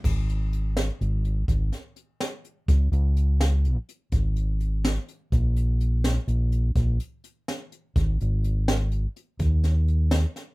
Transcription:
<<
  \new Staff \with { instrumentName = "Fingered electric bass" } { \clef bass \time 11/8 \key cis \mixolydian \tempo 4 = 125 gis,,2 gis,,4 gis,,8 r2 | cis,8 cis,2 r8 gis,,2 r8 | ais,,2 ais,,4 ais,,8 r2 | gis,,8 gis,,2 r8 dis,2 r8 | }
  \new DrumStaff \with { instrumentName = "Drums" } \drummode { \time 11/8 <cymc bd>8 hh8 hh8 <hh sn>8 hh8 hh8 <hh bd>8 <hh sn>8 hh8 <hh sn>8 hh8 | <hh bd>8 hh8 hh8 <hh sn>8 hh8 hh8 <hh bd>8 hh8 hh8 <hh sn>8 hh8 | <hh bd>8 hh8 hh8 <hh sn>8 hh8 hh8 <hh bd>8 hh8 hh8 <hh sn>8 hh8 | <hh bd>8 hh8 hh8 <hh sn>8 hh8 hh8 <hh bd>8 <hh sn>8 hh8 <hh sn>8 <hh sn>8 | }
>>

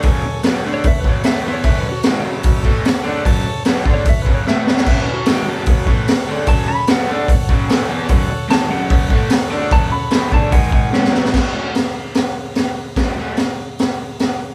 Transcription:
<<
  \new Staff \with { instrumentName = "Electric slide guitar" } { \time 4/4 \key fis \minor \tempo 4 = 148 r4 \tuplet 3/2 { r4 cis''8 e''8 b'8 cis''8 e''8 b'8 cis''8 } | \tuplet 3/2 { e''8 b'8 fis'8~ } fis'4. r4. | r4 \tuplet 3/2 { r4 cis''8 e''8 b'8 cis''8 e''8 b'8 cis''8 } | \tuplet 3/2 { e''8 b'8 fis'8~ } fis'4. r4. |
a''8 b''8 fis''2. | r4 a''8 fis''2 r8 | a''8 b''4 a''8 fis''8 fis''4. | r1 |
r1 | }
  \new Staff \with { instrumentName = "Transistor combo organ" } { \time 4/4 \key fis \minor << { r1 | r1 | r1 | r1 |
r2. fis''8 a''8 | r1 | r1 | r1 |
r1 | } \\ { <a' cis'' gis''>4 <a' cis'' fis''>8 <a' cis'' fis''>8 <a' cis'' fis''>4 <a' cis'' e''>4 | <a' cis'' fis''>4 <a' cis'' fis''>8 <a' cis'' e''>8 <a' cis'' e''>4 <a' cis'' fis''>4 | <a' cis'' a''>4 <a' cis'' fis''>8 <a' cis'' fis''>8 <a' cis'' fis''>4 <a' cis'' fis''>4 | <a' cis'' gis''>4 <a' cis'' e''>8 <a' cis'' a''>8 <a' cis'' fis''>4 <a' cis'' fis''>4 |
<a' cis'' gis''>4 <a' cis'' fis''>8 <a' cis'' a''>8 <a' cis'' fis''>4 <a' cis'' gis''>4 | <a' cis'' fis''>4 <a' cis'' fis''>8 <a' cis'' e''>8 <a' cis'' fis''>4 <a' cis'' fis''>4 | <a' cis'' fis''>4 <a' cis'' gis''>8 <a' cis'' gis''>8 <gis' dis'' gis''>4 <a' cis'' fis''>4 | r1 |
r1 | } >> }
  \new Staff \with { instrumentName = "Overdriven electric guitar" } { \clef bass \time 4/4 \key fis \minor <fis, cis fis>8 <fis, cis>8 <b, fis b>8 <d a d'>8 <fis, cis>8 <fis, cis fis>8 <a, e a>8 <e b e'>8 | <fis, cis fis>8 r8 <gis, dis gis>8 <fis, cis fis>4 <a, e a>8 r8 <d a d'>8 | <fis, cis fis>8 <fis, cis>8 <b, fis b>8 <d a d'>8 <fis, cis>8 <fis, cis fis>8 <a, e a>8 <e b e'>8 | <fis, cis fis>8 r8 <gis, dis gis>8 <fis, cis fis>4 <a, e a>8 r8 <d a d'>8 |
<fis, cis fis>8 <fis, cis>8 <b, fis b>8 <d a d'>8 <fis, cis>8 <fis, cis fis>8 <a, e a>8 <e b e'>8 | <fis, cis fis>8 r8 <gis, dis gis>8 <fis, cis fis>4 <a, e a>8 r8 <d a d'>8 | <fis, cis fis>8 <fis, cis>8 <b, fis b>8 <d a d'>8 <gis, dis gis>4 <cis gis cis'>8 <b, fis b>8 | <fis a cis' fis'>8 <fis a cis' fis'>8 r2. |
<fis a cis' fis'>8 <fis a cis' fis'>8 r2. | }
  \new DrumStaff \with { instrumentName = "Drums" } \drummode { \time 4/4 <hho bd>4 <hho sn>4 <hho bd>8 bd8 <hho sn>4 | <hho bd>4 <hho sn>4 <hho bd>8 bd8 <hho sn>4 | <hho bd>4 <hho sn>8 bd8 <hho bd>8 bd8 sn8 sn16 sn16 | <cymc bd>4 <hho sn>4 <hho bd>8 bd8 <hho sn>4 |
<hho bd>4 <hho sn>4 <hho bd>8 bd8 <hho sn>4 | <hho bd>4 <hho sn>4 <hho bd>8 bd8 <hho sn>4 | <hho bd>4 <hho sn>8 bd8 <hho bd>8 bd8 sn16 sn16 sn16 sn16 | <cymc bd sn>4 <hho sn>4 <hho sn>4 <hho sn>4 |
<hho bd sn>4 <hho sn>4 <hho sn>4 <hho sn>4 | }
>>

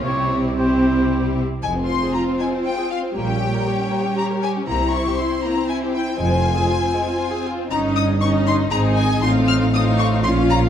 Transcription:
<<
  \new Staff \with { instrumentName = "Violin section" } { \time 3/4 \key f \minor \tempo 4 = 118 g'4 g'4. r8 | aes''8 c'''8 bes''8 aes''8 g''8 f''8 | g''2 bes''8 aes''8 | bes''8 des'''8 c'''8 bes''8 aes''8 g''8 |
aes''2~ aes''8 r8 | bes''8 ees'''8 des'''8 c'''8 bes''8 aes''8 | c'''8 f'''8 ees'''8 des'''8 c'''8 bes''8 | }
  \new Staff \with { instrumentName = "Oboe" } { \time 3/4 \key f \minor des''8 r8 c''4. r8 | r2. | r2. | r2. |
r2. | r2. | r2. | }
  \new Staff \with { instrumentName = "Violin section" } { \time 3/4 \key f \minor << { e'4 e'4. r8 | c''2. | des''2. | c''2.~ |
c''2. | ees''4 ees''4 ees''4 | f''4 f''4 f''4 | } \\ { r2. | aes16 c'16 f'16 aes'16 f'16 c'16 aes16 c'16 f'16 aes'16 f'16 c'16 | bes16 des'16 g'16 bes'16 g'16 des'16 bes16 des'16 g'16 bes'16 g'16 des'16 | bes16 c'16 e'16 g'16 e'16 c'16 bes16 c'16 e'16 g'16 e'16 c'16 |
aes16 c'16 f'16 aes'16 f'16 c'16 aes16 c'16 f'16 aes'16 f'16 c'16 | ees'4 ees'4 aes'4 | f'4 f'4 f'4 | } >> }
  \new Staff \with { instrumentName = "Viola section" } { \time 3/4 \key f \minor << { r2. | f'2. | g'2. | e'2. |
f'2. | ees'4 ees'4 ees'4 | ees'4 ees'4 f'4 | } \\ { c'4 c'4. r8 | c'2. | g2. | c'2.~ |
c'2. | des'4 des'4 c'4 | c'4 c'4 des'4 | } >> }
  \new Staff \with { instrumentName = "Cello section" } { \clef bass \time 3/4 \key f \minor c2~ c8 r8 | f,4 r2 | bes,4 r2 | c4 r2 |
f,4 r2 | g,2 aes,4 | a,2 bes,4 | }
  \new Staff \with { instrumentName = "Double bass section" } { \clef bass \time 3/4 \key f \minor c,2~ c,8 r8 | f,,4 r2 | bes,,4 r2 | c,4 r2 |
f,,4 r2 | g,,2 aes,,4 | a,,2 bes,,4 | }
>>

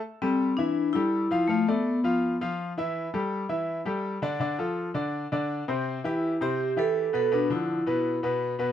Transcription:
<<
  \new Staff \with { instrumentName = "Upright piano" } { \time 4/4 \key a \minor \tempo 4 = 165 r8 <g g' a'>4 <e e' e''>4 <g g' a'>4 <f f' f''>8 | <f f' f''>8 <a a' d''>4 <f f' f''>4 <f f' f''>4 <e e' e''>8~ | <e e' e''>8 <g g' a'>4 <e e' e''>4 <g g' a'>4 <d d' d''>8 | <d d' d''>8 <f f' a'>4 <d d' d''>4 <d d' d''>4 <c c' c''>8~ |
<c c' c''>8 <e e' g'>4 <c c' c''>4 <e e' g'>4 <b, b b'>8 | <b, b b'>8 <d f d'>4 <b, b b'>4 <b, b b'>4 <b, b b'>8 | }
  \new Staff \with { instrumentName = "Vibraphone" } { \time 4/4 \key a \minor r8 c'4 d'4 e'4. | a8 b2 r4. | r1 | r1 |
r8 e'4 g'4 a'4 a'8 | d'8 e'2 r4. | }
>>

